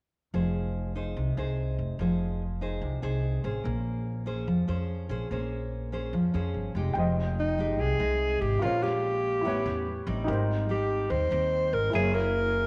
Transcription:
0.34 F1 F3 D#4 G#4 C5
0.95 D#4 G#4 C5
1.16 C2 C3
1.37 C2 D#4 G#4 C5
1.78 F1
1.99 F1 F3 D#4 G#4 C5
2.61 D#4 G#4 C5
2.81 C2 C3
3.02 C2 D#4 G#4 C5
3.44 A1 C#4 G#4 C5
3.64 A#1 A#3
4.26 C#4 G#4 C5
4.47 F2 F3
4.68 F2 C#4 G#4 C5
5.09 A#1 C#4 G#4 C5
5.31 A#1 A#3 C#4 G#4 C5
5.92 C#4 G#4 C5
6.13 F2 F3
6.34 F2 C#4 G#4 C5
6.54 G1
6.75 F1 G#3 D#4 G4
6.93 F1 F3 C5 G5
6.99 D#5
7.39 D#4
7.58 G#3 D#4 G4
7.79 C2 C3 G#4
7.99 C2 G#3 D#4
8.41 G#1 G4
8.59 A#1 A#2 G#3 C#4 F4 A#4
8.63 C5 C#5
8.82 G#3 C#4 F4 G4
9.41 A1 G3 B3 E4 G4
9.45 A2 C#4 B4 C#5
9.66 E2
10.07 A1 G3 C4 D#4
10.24 G#1 G#2 D#4 G4
10.29 A#4 C5
10.69 G3 C4 D#4 G4
11.10 D#2 D#3 C5
11.31 D#2 G3 C4 D#4
11.73 G#1 A#4
11.90 F#1 F#3 A#3 E4 G#4 A#4
11.94 G#4 C#5
12.14 A#3 E4 G#4 A#4

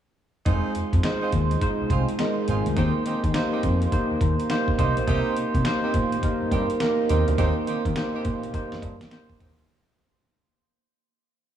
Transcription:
0.46 F1 G#3 C4 D#4 F4 G#4 C5, kick, closed hi-hat
0.75 F2, closed hi-hat
0.93 F2, kick, closed hi-hat
1.03 G#3 D#4 F4 C5, snare, closed hi-hat
1.22 C4 D#4 F4 G#4 C5
1.32 D#2, kick, closed hi-hat
1.51 closed hi-hat
1.61 G#3 D#4 F4 C5, kick, closed hi-hat
1.80 C2
1.90 C2 C4 D#4 F4 G#4 C5, kick, closed hi-hat
2.09 closed hi-hat
2.19 G#3 D#4 F4 A#4, snare, closed hi-hat
2.48 G#1 C4 D#4 F4 G#4 C5, closed hi-hat
2.66 D2, closed hi-hat
2.76 D#2 A#3 C4 D#4 G4 A#4 C5, kick, closed hi-hat
3.05 D#3 C4 D#4 G4 A#4 C5, closed hi-hat
3.24 D#3, kick, closed hi-hat
3.34 A#3 D#4 G4 C5, snare, closed hi-hat
3.52 C4 D#4 G4 A#4 C5
3.63 F2, kick, closed hi-hat
3.82 closed hi-hat
3.92 A#3 D#4 G4 C5, kick, closed hi-hat
4.11 D#2
4.21 D#2 A#5, kick, closed hi-hat
4.40 closed hi-hat
4.50 A#3 D#4 G4 C5 G5, snare, closed hi-hat
4.68 kick
4.78 C2 A#3 C4 D#4 G4 A#4 C5 D#5, kick, closed hi-hat
4.97 A#1, closed hi-hat
5.07 C2 C4 D#4 G4 A#4 C5, kick, closed hi-hat
5.37 C3, closed hi-hat
5.54 C3, kick, closed hi-hat
5.65 A#3 D#4 G4 C5, snare, closed hi-hat
5.83 C4 D#4 G4 A#4 C5
5.94 A#2, kick, closed hi-hat
6.12 closed hi-hat
6.23 A#3 D#4 G4 A#4, kick, closed hi-hat
6.42 G2
6.51 G2 C4 D#4 G4 A#4 C5, kick, closed hi-hat
6.70 closed hi-hat
6.80 A#3 D#4 G4 A#4, snare, closed hi-hat
7.09 D#2 C4 D#4 G4 A#4 C5, closed hi-hat
7.28 D2, closed hi-hat
7.38 D#2 A#3 C4 D#4 G4 A#4 C5, kick, closed hi-hat
7.67 D#3 C4 D#4 G4 A#4 C5, closed hi-hat
7.85 D#3, kick, closed hi-hat
7.96 A#3 D#4 G4 C5, snare, closed hi-hat
8.14 C4 D#4 G4 A#4 C5
8.25 A#2, kick, closed hi-hat
8.43 closed hi-hat
8.54 A#3 D#4 G4 C5, kick, closed hi-hat
8.72 G2, snare
8.82 G2, kick, closed hi-hat
9.01 snare, closed hi-hat
9.11 A#3 D#4 G4 C5, snare, closed hi-hat
9.30 kick
9.40 D#2 C4 D#4 G4 A#4 C5, kick, closed hi-hat
9.59 D2, closed hi-hat

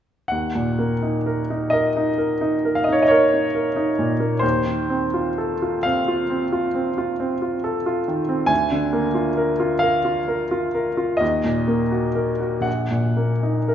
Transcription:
0.28 D#2 F#5
0.55 A#2
0.79 A#3
1.03 D#4
1.26 A#4
1.50 D#4
1.70 A#4 D#5
1.97 D#4
2.18 A#4
2.41 D#4
2.65 A#4
2.75 F5
2.84 D#5
2.89 D#4 C#5
3.02 D#5
3.08 A#4 C#5
3.33 D#4
3.55 A#4
3.76 D#4
3.99 A#2
4.20 A#3
4.39 D#2 C5
4.66 D#3
4.90 C4
5.14 F4
5.38 A4
5.62 F4
5.83 C4 F5
6.08 F4
6.30 C4
6.52 F4
6.75 C4
6.98 F4
7.20 C4
7.42 F4
7.64 A4
7.86 F4
8.08 D#3
8.29 C4
8.46 D2 G#5
8.72 D3
8.93 A#3
9.14 F4
9.37 A#4
9.60 F4
9.79 A#4 F5
10.05 F4
10.28 A#4
10.51 F4
10.75 A#4
10.97 F4
11.17 D#2 D#5
11.44 A#2
11.68 A#3
11.91 F#4
12.15 A#4
12.40 F#4
12.61 A#1 F#5
12.91 A#2
13.17 A#3
13.43 D#4
13.68 A#4

